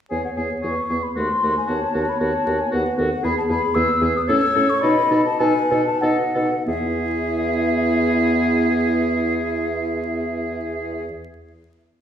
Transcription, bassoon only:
0, 0, Header, 1, 2, 480
1, 0, Start_track
1, 0, Key_signature, 4, "major"
1, 0, Tempo, 520833
1, 102, Time_signature, 3, 2, 24, 8
1, 3461, Tempo, 550459
1, 4901, Tempo, 639659
1, 9858, End_track
2, 0, Start_track
2, 0, Title_t, "Bassoon"
2, 0, Program_c, 0, 70
2, 102, Note_on_c, 0, 40, 40
2, 211, Note_off_c, 0, 40, 0
2, 338, Note_on_c, 0, 40, 39
2, 449, Note_off_c, 0, 40, 0
2, 584, Note_on_c, 0, 40, 43
2, 695, Note_off_c, 0, 40, 0
2, 825, Note_on_c, 0, 40, 38
2, 935, Note_off_c, 0, 40, 0
2, 1072, Note_on_c, 0, 39, 43
2, 1181, Note_off_c, 0, 39, 0
2, 1316, Note_on_c, 0, 39, 45
2, 1425, Note_off_c, 0, 39, 0
2, 1555, Note_on_c, 0, 39, 47
2, 1663, Note_off_c, 0, 39, 0
2, 1788, Note_on_c, 0, 39, 50
2, 1897, Note_off_c, 0, 39, 0
2, 2027, Note_on_c, 0, 39, 50
2, 2136, Note_off_c, 0, 39, 0
2, 2271, Note_on_c, 0, 39, 51
2, 2379, Note_off_c, 0, 39, 0
2, 2513, Note_on_c, 0, 39, 54
2, 2619, Note_off_c, 0, 39, 0
2, 2748, Note_on_c, 0, 39, 62
2, 2854, Note_off_c, 0, 39, 0
2, 2981, Note_on_c, 0, 40, 60
2, 3089, Note_off_c, 0, 40, 0
2, 3217, Note_on_c, 0, 40, 59
2, 3325, Note_off_c, 0, 40, 0
2, 3457, Note_on_c, 0, 40, 74
2, 3561, Note_off_c, 0, 40, 0
2, 3684, Note_on_c, 0, 40, 67
2, 3790, Note_off_c, 0, 40, 0
2, 3921, Note_on_c, 0, 45, 70
2, 4028, Note_off_c, 0, 45, 0
2, 4158, Note_on_c, 0, 45, 74
2, 4267, Note_off_c, 0, 45, 0
2, 4401, Note_on_c, 0, 47, 75
2, 4511, Note_off_c, 0, 47, 0
2, 4639, Note_on_c, 0, 47, 67
2, 4756, Note_off_c, 0, 47, 0
2, 4895, Note_on_c, 0, 47, 71
2, 5000, Note_off_c, 0, 47, 0
2, 5128, Note_on_c, 0, 47, 68
2, 5235, Note_off_c, 0, 47, 0
2, 5366, Note_on_c, 0, 47, 67
2, 5476, Note_off_c, 0, 47, 0
2, 5611, Note_on_c, 0, 47, 67
2, 5721, Note_off_c, 0, 47, 0
2, 5856, Note_on_c, 0, 40, 71
2, 9133, Note_off_c, 0, 40, 0
2, 9858, End_track
0, 0, End_of_file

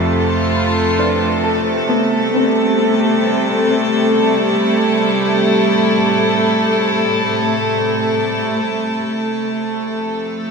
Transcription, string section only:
0, 0, Header, 1, 2, 480
1, 0, Start_track
1, 0, Tempo, 895522
1, 1008, Time_signature, 4, 2, 24, 8
1, 5632, End_track
2, 0, Start_track
2, 0, Title_t, "String section"
2, 0, Program_c, 0, 48
2, 0, Note_on_c, 0, 48, 84
2, 0, Note_on_c, 0, 53, 75
2, 0, Note_on_c, 0, 57, 88
2, 0, Note_on_c, 0, 65, 85
2, 0, Note_on_c, 0, 69, 86
2, 1006, Note_off_c, 0, 65, 0
2, 1010, Note_off_c, 0, 53, 0
2, 1157, Note_on_c, 0, 55, 81
2, 1673, Note_on_c, 0, 64, 78
2, 4852, Note_off_c, 0, 55, 0
2, 5307, Note_on_c, 0, 53, 68
2, 5620, Note_off_c, 0, 64, 0
2, 5632, Note_off_c, 0, 48, 0
2, 5632, Note_off_c, 0, 53, 0
2, 5632, Note_off_c, 0, 57, 0
2, 5632, Note_off_c, 0, 69, 0
2, 5632, End_track
0, 0, End_of_file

